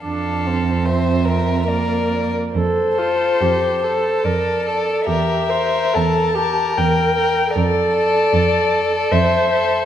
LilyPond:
<<
  \new Staff \with { instrumentName = "Violin" } { \time 3/4 \key f \major \tempo 4 = 73 f''4 e''4 d''8. r16 | c''2 d''4 | e''4 a''4 g''4 | d''2 e''4 | }
  \new Staff \with { instrumentName = "Violin" } { \time 3/4 \key f \major a'4 c''8 bes'8 bes'8. r16 | r8 a'4 a'4 a'8 | bes'8 bes'4 bes'4 bes'8 | r8 a'4 a'4 a'8 | }
  \new Staff \with { instrumentName = "Viola" } { \time 3/4 \key f \major d'8 c'4. bes8. r16 | a'8 f'8 g'8 a'8 bes'8 a'8 | g'8 c''8 a'8 g'8 bes'4 | a'2 c''4 | }
  \new Staff \with { instrumentName = "Cello" } { \clef bass \time 3/4 \key f \major f,2~ f,8. r16 | f,4 f,4 f,4 | e,4 e,4 e,4 | f,4 f,4 f,4 | }
>>